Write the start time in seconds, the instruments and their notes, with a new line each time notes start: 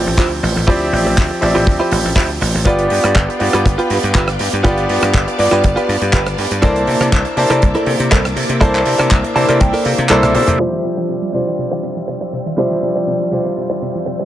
Already playing: grand piano F3 C4 G4 D5 E5
0.06 slap bass A1
0.17 slap bass D2, clean electric guitar E4 F4 G4 C5, kick, clap
0.43 slap bass A1, muted clean electric guitar stroke, open hi-hat
0.56 slap bass A1, muted clean electric guitar stroke
0.67 slap bass D2, grand piano F3 C4 G4 D5 E5, clean electric guitar E4 F4 G4 C5, kick
0.93 slap bass A1, open hi-hat
1.05 slap bass A1, muted clean electric guitar stroke
1.17 slap bass D2, muted clean electric guitar stroke, kick, clap
1.30 muted clean electric guitar stroke
1.41 slap bass A1, grand piano F3 C4 G4 D5 E5, open hi-hat
1.55 slap bass A1, clean electric guitar E4 F4 G4 C5
1.67 slap bass D2, kick
1.80 clean electric guitar E4 F4 G4 C5
1.91 slap bass A1, open hi-hat
2.05 slap bass A1
2.16 slap bass D2, clean electric guitar E4 F4 G4 C5, kick, clap
2.41 slap bass A1, muted clean electric guitar stroke, open hi-hat
2.54 slap bass A1, muted clean electric guitar stroke
2.65 slap bass G1, grand piano B3 D4 F4 G4 D5, clean electric guitar F4 G4 B4, string machine B4 F5 G5 D6, kick, closed hi-hat
2.79 closed hi-hat
2.90 slap bass G2, open hi-hat
3.04 slap bass G2, muted clean electric guitar stroke, cross-stick, closed hi-hat
3.15 slap bass G1, muted clean electric guitar stroke, kick, clap, closed hi-hat
3.29 muted clean electric guitar stroke, closed hi-hat
3.39 slap bass G2, grand piano B3 D4 F4 G4 D5, open hi-hat
3.53 slap bass G2, clean electric guitar F4 G4 B4, cross-stick, closed hi-hat
3.65 slap bass G1, kick, closed hi-hat
3.78 clean electric guitar F4 G4 B4, closed hi-hat
3.90 slap bass G2, open hi-hat
4.03 slap bass G2, closed hi-hat
4.14 slap bass G1, clean electric guitar F4 G4 B4, kick, clap, closed hi-hat
4.28 cross-stick, closed hi-hat
4.39 slap bass G2, muted clean electric guitar stroke, open hi-hat
4.52 slap bass G2, muted clean electric guitar stroke, closed hi-hat
4.63 slap bass G1, grand piano B3 D4 F4 G4 D5, clean electric guitar F4 G4 B4, string machine A5, kick, closed hi-hat
4.77 closed hi-hat
4.89 slap bass G2, open hi-hat
5.02 slap bass G2, muted clean electric guitar stroke, cross-stick, closed hi-hat
5.14 slap bass G1, muted clean electric guitar stroke, kick, clap, closed hi-hat
5.26 muted clean electric guitar stroke, closed hi-hat
5.38 slap bass G2, grand piano B3 D4 F4 G4 D5, open hi-hat
5.51 slap bass G2, clean electric guitar F4 G4 B4, cross-stick, closed hi-hat
5.64 slap bass G1, kick, closed hi-hat
5.76 clean electric guitar F4 G4 B4, closed hi-hat
5.89 slap bass G2, open hi-hat
6.01 slap bass G2, closed hi-hat
6.13 slap bass G1, clean electric guitar F4 G4 B4, kick, clap, closed hi-hat
6.26 cross-stick, closed hi-hat
6.37 slap bass G2, muted clean electric guitar stroke, open hi-hat
6.50 slap bass G2, muted clean electric guitar stroke, closed hi-hat
6.62 slap bass C2, grand piano A#3 D4 E4 C5 A5, string machine A#3 E5 D6, clean electric guitar E4 A4 A#4 D5, kick, closed hi-hat
6.76 closed hi-hat
6.87 slap bass C3, open hi-hat
7.00 slap bass C3, muted clean electric guitar stroke, cross-stick, closed hi-hat
7.12 slap bass C2, muted clean electric guitar stroke, kick, clap, closed hi-hat
7.25 muted clean electric guitar stroke, closed hi-hat
7.36 slap bass C3, grand piano A#3 D4 E4 C5 A5, open hi-hat
7.50 slap bass C3, clean electric guitar E4 A4 A#4 D5, cross-stick, closed hi-hat
7.62 slap bass C2, kick, closed hi-hat
7.75 clean electric guitar E4 A4 A#4 D5, closed hi-hat
7.86 slap bass C3, open hi-hat
8.00 slap bass C3, closed hi-hat
8.11 slap bass C2, clean electric guitar E4 A4 A#4 C5, kick, clap, closed hi-hat
8.25 cross-stick, closed hi-hat
8.36 slap bass C3, muted clean electric guitar stroke, open hi-hat
8.49 slap bass C3, muted clean electric guitar stroke, closed hi-hat
8.60 slap bass C2, grand piano A#3 D4 E4 C5 A5, clean electric guitar E4 A4 A#4 C5, kick, closed hi-hat
8.75 clap, closed hi-hat
8.86 slap bass C3, open hi-hat
8.99 slap bass C3, muted clean electric guitar stroke, cross-stick, closed hi-hat
9.10 slap bass C2, muted clean electric guitar stroke, kick, clap, closed hi-hat
9.23 muted clean electric guitar stroke, closed hi-hat
9.34 slap bass C3, grand piano A#3 D4 E4 C5 A5, clean electric guitar A5, open hi-hat
9.48 slap bass C3, clean electric guitar E4 A4 A#4 D5, cross-stick, closed hi-hat
9.60 slap bass C2, clean electric guitar G5, kick, closed hi-hat
9.73 clean electric guitar E4 A4 A#4 D5, open hi-hat
9.85 slap bass C3, clean electric guitar F5, open hi-hat
9.98 slap bass C3, closed hi-hat
10.09 slap bass C2, grand piano A#3 D4 E4 A4 C5, clean electric guitar E4 A4 A#4 D5 E5, clap, closed hi-hat, high tom
10.23 cross-stick, closed hi-hat, high tom
10.34 slap bass C3, grand piano A#3 D4 E4 A4 C5, clean electric guitar D5, muted clean electric guitar stroke, open hi-hat
10.47 slap bass C3, muted clean electric guitar stroke, closed hi-hat, mid tom
10.58 synth arpeggio sound C3, string machine F3 C5 D5 E5 G5, grand piano F3 G3 D4 C5, clean electric guitar E4 F4 G4 C5 D5, shaker
10.73 synth arpeggio sound E3
10.84 synth arpeggio sound C3, shaker
10.97 synth arpeggio sound F3, muted clean electric guitar stroke, shaker
11.09 synth arpeggio sound C3, muted clean electric guitar stroke, shaker
11.22 synth arpeggio sound G3
11.33 synth arpeggio sound C3, grand piano G3 D4 F4 C5, shaker
11.47 synth arpeggio sound E3, muted clean electric guitar stroke, shaker
11.58 synth arpeggio sound C3, shaker
11.71 synth arpeggio sound E3, muted clean electric guitar stroke
11.83 synth arpeggio sound C3, muted clean electric guitar stroke, shaker
11.97 synth arpeggio sound F3, shaker
12.08 synth arpeggio sound C3, muted clean electric guitar stroke, shaker
12.21 synth arpeggio sound G3, muted clean electric guitar stroke
12.33 synth arpeggio sound C3, muted clean electric guitar stroke, shaker
12.46 synth arpeggio sound E3, muted clean electric guitar stroke, shaker
12.57 synth arpeggio sound C3, grand piano F3 G3 D4 C5 E5, clean electric guitar E4 F4 G4 C5 D5, shaker
12.71 synth arpeggio sound E3
12.82 synth arpeggio sound C3, shaker
12.95 synth arpeggio sound F3, muted clean electric guitar stroke, shaker
13.07 synth arpeggio sound C3, muted clean electric guitar stroke, shaker
13.20 synth arpeggio sound G3
13.31 synth arpeggio sound C3, grand piano G3 D4 F4 C5, shaker
13.45 synth arpeggio sound E3, muted clean electric guitar stroke, shaker
13.57 synth arpeggio sound C3, shaker
13.70 synth arpeggio sound E3, muted clean electric guitar stroke
13.81 synth arpeggio sound C3, muted clean electric guitar stroke, shaker
13.95 synth arpeggio sound F3, shaker
14.06 synth arpeggio sound C3, muted clean electric guitar stroke, shaker
14.19 synth arpeggio sound G3, muted clean electric guitar stroke